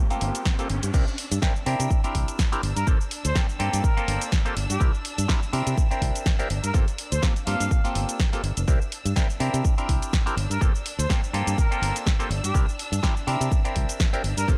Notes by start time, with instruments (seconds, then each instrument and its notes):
Already playing: string section G4 G5, riser
0.10 clav A#3 C4 F4 G4 A4, muted fingered electric bass stroke, closed hi-hat, shaker
0.21 fingered electric bass G1, open hi-hat
0.35 closed hi-hat, shaker
0.45 kick, snare, shaker
0.59 clav A#3 C4 F4 G4 A4, closed hi-hat, shaker
0.70 fingered electric bass G1, open hi-hat
0.83 fingered electric bass G2, closed hi-hat, shaker
0.94 fingered electric bass C2, clav C4 D4 E4 G4 A#4, string section D4 E6, kick, crash, shaker
1.07 shaker
1.18 open hi-hat
1.31 fingered electric bass G2, closed hi-hat, shaker
1.42 clav C4 D4 E4 G4 A#4, kick, snare, shaker
1.56 shaker
1.66 fingered electric bass C3, clav C4 D4 E4 G4 A#4, open hi-hat
1.80 fingered electric bass C3, closed hi-hat, shaker
1.91 kick, shaker
2.04 clav C4 D4 E4 G4 A#4, muted fingered electric bass stroke, closed hi-hat, shaker
2.15 fingered electric bass C2, kick, open hi-hat
2.28 closed hi-hat, shaker
2.39 kick, snare, shaker
2.52 clav C4 D4 E4 G4 A#4, closed hi-hat, shaker
2.63 fingered electric bass G1, open hi-hat
2.76 fingered electric bass G2, trumpet section A#4, closed hi-hat, shaker
2.87 fingered electric bass G1, clav A#3 C4 F4 G4 A4, kick, shaker
3.01 shaker
3.11 open hi-hat
3.25 fingered electric bass D2, trumpet section C5, closed hi-hat, shaker
3.35 clav A#3 C4 F4 G4 A4, kick, snare, shaker
3.49 shaker
3.59 fingered electric bass G2, clav A#3 C4 F4 G4 A4, open hi-hat
3.73 fingered electric bass G2, closed hi-hat, shaker
3.84 trumpet section A#4, kick, shaker
3.97 clav A#3 C4 F4 G4 A4, muted fingered electric bass stroke, closed hi-hat, shaker
4.08 fingered electric bass G1, open hi-hat
4.22 closed hi-hat, shaker
4.32 kick, snare, shaker
4.45 clav A#3 C4 F4 G4 A4, closed hi-hat, shaker
4.56 fingered electric bass G1, open hi-hat
4.70 fingered electric bass G2, trumpet section G4, closed hi-hat, shaker
4.80 fingered electric bass C2, clav C4 D4 E4 G4 A#4, kick, shaker
4.94 shaker
5.05 open hi-hat
5.18 fingered electric bass G2, closed hi-hat, shaker
5.28 clav C4 D4 E4 G4 A#4, kick, snare, shaker
5.43 shaker
5.53 fingered electric bass C3, clav C4 D4 E4 G4 A#4, open hi-hat
5.67 fingered electric bass C3, closed hi-hat, shaker
5.78 kick, shaker
5.91 clav C4 D4 E4 G4 A#4, muted fingered electric bass stroke, closed hi-hat, shaker
6.02 fingered electric bass C2, kick, open hi-hat
6.16 closed hi-hat, shaker
6.26 kick, snare, shaker
6.39 clav C4 D4 E4 G4 A#4, closed hi-hat, shaker
6.50 fingered electric bass G1, open hi-hat
6.63 fingered electric bass G2, trumpet section A#4, closed hi-hat, shaker
6.74 fingered electric bass G1, clav A#3 C4 F4 G4 A4, kick, shaker
6.88 closed hi-hat, shaker
6.98 open hi-hat
7.12 fingered electric bass D2, trumpet section C5, closed hi-hat, shaker
7.22 clav A#3 C4 F4 G4 A4, kick, snare, shaker
7.36 closed hi-hat, shaker
7.47 fingered electric bass G2, clav A#3 C4 F4 G4 A4, trumpet section F5, open hi-hat
7.60 fingered electric bass G2, closed hi-hat, shaker
7.71 kick, shaker
7.84 clav A#3 C4 F4 G4 A4, muted fingered electric bass stroke, closed hi-hat, shaker
7.95 fingered electric bass G1, open hi-hat
8.09 closed hi-hat, shaker
8.20 kick, snare, shaker
8.33 clav A#3 C4 F4 G4 A4, closed hi-hat, shaker
8.43 fingered electric bass G1, open hi-hat
8.57 fingered electric bass F1, closed hi-hat, shaker
8.68 fingered electric bass C2, clav C4 D4 E4 G4 A#4, string section D4 E6, kick, shaker
8.81 shaker
8.92 open hi-hat
9.05 fingered electric bass G2, closed hi-hat, shaker
9.16 clav C4 D4 E4 G4 A#4, kick, snare, shaker
9.30 shaker
9.40 fingered electric bass C3, clav C4 D4 E4 G4 A#4, open hi-hat
9.54 fingered electric bass C3, closed hi-hat, shaker
9.65 kick, shaker
9.78 clav C4 D4 E4 G4 A#4, muted fingered electric bass stroke, closed hi-hat, shaker
9.89 fingered electric bass C2, kick, open hi-hat
10.02 closed hi-hat, shaker
10.13 kick, snare, shaker
10.26 clav C4 D4 E4 G4 A#4, closed hi-hat, shaker
10.37 fingered electric bass G1, open hi-hat
10.50 fingered electric bass G2, trumpet section A#4, closed hi-hat, shaker
10.61 fingered electric bass G1, clav A#3 C4 F4 G4 A4, kick, shaker
10.75 shaker
10.86 open hi-hat
10.99 fingered electric bass D2, trumpet section C5, closed hi-hat, shaker
11.09 clav A#3 C4 F4 G4 A4, kick, snare, shaker
11.24 shaker
11.33 fingered electric bass G2, clav A#3 C4 F4 G4 A4, open hi-hat
11.47 fingered electric bass G2, closed hi-hat, shaker
11.58 trumpet section A#4, kick, shaker
11.71 clav A#3 C4 F4 G4 A4, muted fingered electric bass stroke, closed hi-hat, shaker
11.82 fingered electric bass G1, open hi-hat
11.96 closed hi-hat, shaker
12.06 kick, snare, shaker
12.19 clav A#3 C4 F4 G4 A4, closed hi-hat, shaker
12.30 fingered electric bass G1, open hi-hat
12.44 fingered electric bass G2, trumpet section G4, closed hi-hat, shaker
12.54 fingered electric bass C2, clav C4 D4 E4 G4 A#4, kick, shaker
12.69 shaker
12.79 open hi-hat
12.92 fingered electric bass G2, closed hi-hat, shaker
13.03 clav C4 D4 E4 G4 A#4, kick, snare, shaker
13.17 shaker
13.27 fingered electric bass C3, clav C4 D4 E4 G4 A#4, open hi-hat
13.41 fingered electric bass C3, closed hi-hat, shaker
13.52 kick, shaker
13.65 clav C4 D4 E4 G4 A#4, muted fingered electric bass stroke, closed hi-hat, shaker
13.76 fingered electric bass C2, kick, open hi-hat
13.89 closed hi-hat, shaker
14.00 kick, snare, shaker
14.13 clav C4 D4 E4 G4 A#4, closed hi-hat, shaker
14.24 fingered electric bass G1, open hi-hat
14.37 fingered electric bass G2, trumpet section A#4, closed hi-hat, shaker
14.48 fingered electric bass G1, clav A#3 C4 F4 G4 A4, kick, shaker